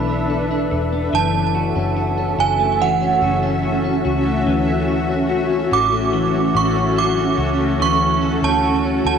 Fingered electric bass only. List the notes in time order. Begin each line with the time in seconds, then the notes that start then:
Already playing: B1
0.72 E1
1.13 F#1
1.76 F#1
2.38 F#1
3.22 F#1
4.05 C#2
4.47 D2
5.72 A1
6.55 A1
7.38 C#2
7.80 D2
8.42 D2
9.05 D2